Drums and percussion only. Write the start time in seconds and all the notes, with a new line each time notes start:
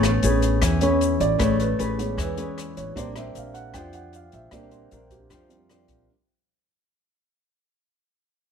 0.03 cross-stick, closed hi-hat, shaker
0.23 closed hi-hat, shaker
0.42 closed hi-hat, shaker
0.62 kick, cross-stick, closed hi-hat, shaker
0.81 closed hi-hat, shaker
1.01 closed hi-hat, shaker
1.20 closed hi-hat, shaker
1.40 kick, cross-stick, closed hi-hat, shaker
1.60 closed hi-hat, shaker
1.79 closed hi-hat, shaker
1.99 closed hi-hat, shaker
2.18 kick, cross-stick, closed hi-hat, shaker
2.37 closed hi-hat, shaker
2.58 cross-stick, closed hi-hat, shaker
2.77 closed hi-hat, shaker
2.96 kick, closed hi-hat, shaker
3.16 cross-stick, closed hi-hat, shaker
3.35 closed hi-hat, shaker
3.55 closed hi-hat, shaker
3.74 kick, cross-stick, closed hi-hat, shaker
3.93 closed hi-hat, shaker
4.13 closed hi-hat, shaker
4.32 closed hi-hat, shaker
4.51 kick, cross-stick, closed hi-hat, shaker
4.71 closed hi-hat, shaker
4.91 closed hi-hat, shaker
5.10 kick, closed hi-hat, shaker
5.30 kick, cross-stick, closed hi-hat, shaker
5.50 closed hi-hat, shaker
5.69 cross-stick, closed hi-hat, shaker
5.88 kick, closed hi-hat, shaker